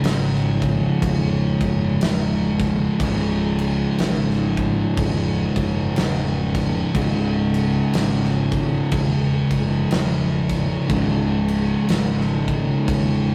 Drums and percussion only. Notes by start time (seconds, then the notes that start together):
0.04 snare, crash
0.35 snare
0.62 kick, crash
1.02 kick, crash
1.61 kick, crash
2.01 snare, crash
2.60 kick, snare, crash
3.00 kick, crash
3.59 crash
3.98 snare, crash
4.30 snare
4.57 kick, crash
4.97 kick, crash
5.56 kick, crash
5.96 snare, crash
6.55 kick, snare, crash
6.95 kick, crash
7.54 crash
7.93 snare, crash
8.24 snare
8.52 kick, crash
8.91 kick, crash
9.51 kick, crash
9.91 snare, crash
10.49 kick, snare, crash
10.89 kick, crash
11.48 crash
11.89 snare, crash
12.20 snare
12.48 kick, crash
12.88 kick, crash